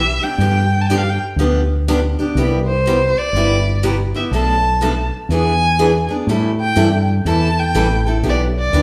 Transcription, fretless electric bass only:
Already playing: B1
0.38 G2
1.36 D2
2.35 C2
3.33 G1
4.31 B1
5.29 E2
6.27 A2
6.76 G2
7.25 E2
7.75 A1
8.23 B1
8.73 D2

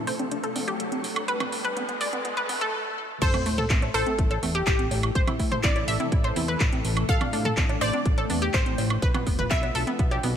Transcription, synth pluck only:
3.22 C5
3.94 A4
4.67 G4
5.63 D5
7.09 F5
7.81 D5
8.54 C5
9.51 E5

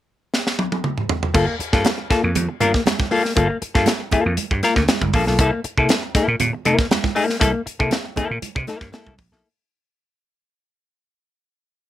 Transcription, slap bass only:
1.34 G1
1.59 muted slap bass stroke
1.73 G2
2.11 muted slap bass stroke
2.24 F2
2.36 F2
2.61 G2
3.36 G1
3.62 muted slap bass stroke
3.75 G2
4.12 muted slap bass stroke
4.26 F2
4.38 muted slap bass stroke
4.51 G2
4.76 D2
5.01 G1
5.13 A#1
5.27 B1
5.39 C2
5.64 muted slap bass stroke
5.77 C3
6.15 muted slap bass stroke
6.28 A#2
6.40 A#2
6.66 C3
7.41 C2
7.66 muted slap bass stroke
7.80 C3
8.17 muted slap bass stroke
8.31 A#2
8.42 muted slap bass stroke
8.56 C3
8.81 G2
9.06 C2
9.19 A#1
9.32 B1

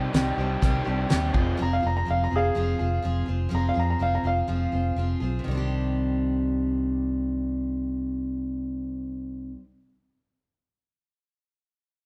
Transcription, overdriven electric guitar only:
Already playing: C3 D#3 G3 C4 G4
0.13 D#3 G3 C4 G4
0.36 G3 C4 G4
0.61 C3 D#3 G3 C4 G4
0.85 G3 C4 G4
1.08 D#3 G3 C4 G4
1.33 F2 C3 F3 G#3 C4 F4

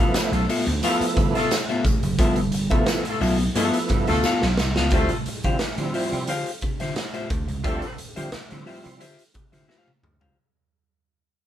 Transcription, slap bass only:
0.00 A1
0.14 muted slap bass stroke
0.32 B1
0.67 D2
1.00 muted slap bass stroke
1.17 G1
1.85 A1
2.02 F#1
2.19 G1
2.71 A1
3.21 B1
3.55 G2
3.90 G2
4.09 D2
4.43 B1
4.59 C2
4.77 C#2
4.92 D2
5.26 muted slap bass stroke
5.44 D3
5.59 muted slap bass stroke
5.78 D3
6.12 C3
6.28 D3
6.62 muted slap bass stroke
6.82 D3
7.30 D2
7.49 C#2
7.65 D2
7.99 muted slap bass stroke
8.17 D3
8.34 muted slap bass stroke
8.52 D3
8.86 C3
9.01 D3
9.36 muted slap bass stroke
9.53 D3
10.03 D2
10.22 C#2

